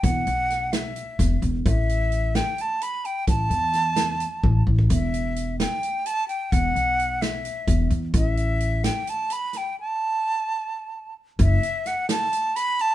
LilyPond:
<<
  \new Staff \with { instrumentName = "Flute" } { \time 7/8 \key e \dorian \tempo 4 = 129 fis''4. e''4. r8 | e''4. g''8 a''8 b''8 g''8 | a''2. r8 | e''4. g''4 a''8 g''8 |
fis''4. e''4. r8 | e''4. g''8 a''8 b''8 g''8 | a''2. r8 | e''4 fis''8 a''4 b''8 a''8 | }
  \new Staff \with { instrumentName = "Upright bass" } { \clef bass \time 7/8 \key e \dorian e,,8 b,,2 e,,8 e,,8 | a,,2 r4. | a,,8 e,2 a,,8 a,,8 | e,,2 r4. |
e,,8 b,,2 e,,8 e,8 | a,,2 r4. | r2. r8 | fis,,8 r2. | }
  \new DrumStaff \with { instrumentName = "Drums" } \drummode { \time 7/8 <hh bd>8 hh8 <hh sn>8 <hh sn>8 hh8 <hh bd sn>8 <hh bd>8 | <hh bd>8 hh8 hh8 <hh sn>8 hh8 hh8 hh8 | <hh bd>8 hh8 <hh sn>8 <hh sn>8 hh8 <bd tommh>8 bd16 bd16 | <hh bd>8 hh8 hh8 <hh sn>8 hh8 hh8 hh8 |
<hh bd>8 hh8 hh8 <hh sn>8 hh8 <hh bd>8 <hh bd>8 | <hh bd>8 hh8 hh8 <hh sn>8 hh8 hh8 <hh sn>8 | r4. r4 r4 | <hh bd>8 hh8 <hh sn>8 <hh sn>8 hh8 hh8 hh8 | }
>>